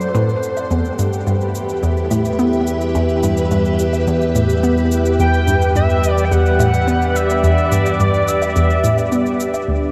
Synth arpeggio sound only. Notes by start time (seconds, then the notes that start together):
Already playing: F#3
0.15 A2
0.71 E2
0.99 G2
1.27 G2
1.83 E2
2.11 A2
2.39 B3
2.95 E2
3.23 G2
3.51 G2
4.07 E2
4.35 A2
4.63 B3
5.19 E2
5.47 G2
5.75 G2
6.32 E2
6.59 A2
6.88 B3
7.44 E2
7.72 G2
8.00 G2
8.56 E2
8.84 A2
9.12 B3
9.68 D2